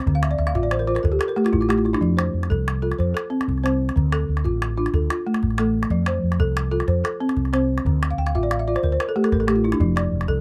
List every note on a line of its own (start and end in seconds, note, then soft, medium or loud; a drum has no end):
0.00 0.23 C5 medium
0.06 0.34 D2 medium
0.06 0.39 D3 medium
0.06 calabash thump medium
0.15 0.30 F5 medium
0.23 0.37 E5 medium
0.23 calabash click medium
0.31 0.46 D5 medium
0.31 calabash click soft
0.38 0.53 D2 medium
0.38 0.54 E5 medium
0.38 calabash click soft
0.47 0.62 F5 medium
0.47 calabash click soft
0.55 0.97 A1 medium
0.55 0.86 F4 medium
0.55 0.70 E5 medium
0.55 calabash thump medium
0.55 calabash click soft
0.63 0.78 D5 medium
0.71 0.86 C5 medium
0.71 calabash click medium
0.79 0.94 A#4 medium
0.87 1.20 F4 medium
0.87 1.03 C5 medium
0.95 1.10 A#4 medium
0.95 calabash click soft
1.03 1.18 D2 medium
1.03 1.18 A4 medium
1.03 calabash thump medium
1.12 1.27 G4 medium
1.19 1.35 A4 medium
1.19 calabash click medium
1.28 1.43 A#4 medium
1.28 calabash click soft
1.36 1.68 A3 medium
1.36 1.51 G4 medium
1.36 calabash click soft
1.45 1.60 F4 medium
1.45 calabash click medium
1.53 1.94 A1 medium
1.53 1.68 E4 medium
1.53 calabash thump medium
1.53 calabash click soft
1.61 1.76 F4 medium
1.61 calabash click soft
1.69 2.01 A3 medium
1.69 1.84 G4 medium
1.69 calabash click medium
1.78 1.92 F4 medium
1.78 calabash click soft
1.85 2.00 E4 medium
1.85 calabash click soft
1.93 2.08 D4 medium
1.93 calabash click soft
2.01 2.29 F2 medium
2.01 2.34 F3 medium
2.01 calabash thump medium
2.17 2.66 C5 medium
2.17 calabash click medium
2.34 2.48 F2 medium
2.43 calabash click soft
2.50 2.91 C2 medium
2.50 2.81 A4 medium
2.50 calabash thump medium
2.68 calabash click medium
2.82 3.31 F4 medium
2.82 3.13 A4 medium
2.92 calabash click soft
2.99 3.13 F2 medium
2.99 3.47 C5 medium
2.99 calabash thump medium
2.99 calabash click soft
3.14 3.63 A4 medium
3.14 calabash click medium
3.30 3.62 C4 medium
3.41 calabash click soft
3.48 3.89 C2 medium
3.48 calabash thump medium
3.58 calabash click soft
3.63 3.96 C4 medium
3.63 4.12 C5 medium
3.63 calabash click medium
3.89 calabash click soft
3.96 4.24 D2 medium
3.96 4.28 D3 medium
3.96 calabash thump medium
4.12 4.61 A4 medium
4.12 calabash click medium
4.29 4.42 D2 medium
4.37 calabash click soft
4.44 4.86 A1 medium
4.44 4.76 F4 medium
4.44 calabash thump medium
4.62 calabash click medium
4.77 5.26 D4 medium
4.77 5.10 F4 medium
4.86 calabash click soft
4.94 5.07 D2 medium
4.94 5.42 A4 medium
4.94 calabash thump medium
4.94 calabash click soft
5.10 5.59 F4 medium
5.10 calabash click medium
5.27 5.58 A3 medium
5.34 calabash click soft
5.42 5.83 A1 medium
5.42 calabash thump medium
5.50 calabash click soft
5.58 5.91 A3 medium
5.58 6.07 A4 medium
5.58 calabash click medium
5.83 calabash click soft
5.90 6.18 F2 medium
5.90 6.23 F3 medium
5.90 calabash thump medium
6.06 6.56 C5 medium
6.06 calabash click medium
6.23 6.37 F2 medium
6.32 calabash click soft
6.39 6.81 C2 medium
6.39 6.70 A4 medium
6.39 calabash thump medium
6.57 calabash click medium
6.71 7.20 F4 medium
6.71 7.03 A4 medium
6.80 calabash click soft
6.88 7.02 F2 medium
6.88 7.37 C5 medium
6.88 calabash thump medium
6.88 calabash click soft
7.04 7.53 A4 medium
7.04 calabash click medium
7.20 7.52 C4 medium
7.29 calabash click soft
7.37 7.78 C2 medium
7.37 calabash thump medium
7.45 calabash click soft
7.53 7.85 C4 medium
7.53 8.02 C5 medium
7.53 calabash click medium
7.78 calabash click soft
7.85 8.13 D2 medium
7.85 8.18 D3 medium
7.85 calabash thump medium
8.03 calabash click medium
8.11 8.25 F5 medium
8.18 8.31 D2 medium
8.18 8.33 G5 medium
8.26 8.41 F5 medium
8.26 calabash click soft
8.34 8.75 A1 medium
8.34 8.66 F4 medium
8.34 8.50 E5 medium
8.34 calabash thump medium
8.43 8.58 D5 medium
8.51 8.66 F5 medium
8.51 calabash click medium
8.59 8.74 E5 medium
8.68 8.99 F4 medium
8.68 8.82 D5 medium
8.76 8.90 C5 medium
8.76 calabash click soft
8.83 8.97 D2 medium
8.83 8.98 A#4 medium
8.83 calabash thump medium
8.92 9.07 C5 medium
9.00 9.15 A#4 medium
9.00 calabash click medium
9.09 9.23 A4 medium
9.16 9.46 A3 medium
9.16 9.30 G4 medium
9.24 9.39 A4 medium
9.24 calabash click soft
9.32 9.73 A1 medium
9.32 9.47 A#4 medium
9.32 calabash thump medium
9.32 calabash click soft
9.40 9.55 A4 medium
9.40 calabash click soft
9.48 9.80 A3 medium
9.48 9.63 G4 medium
9.48 calabash click medium
9.56 9.71 F4 medium
9.64 9.79 E4 medium
9.64 calabash click soft
9.72 9.87 D4 medium
9.72 calabash click soft
9.80 10.07 F1 medium
9.80 10.12 F3 medium
9.80 calabash thump medium
9.96 10.41 D5 medium
9.96 calabash click medium
10.12 10.26 F1 medium
10.21 calabash click soft
10.28 10.41 C2 medium
10.28 10.41 A4 medium
10.28 calabash thump medium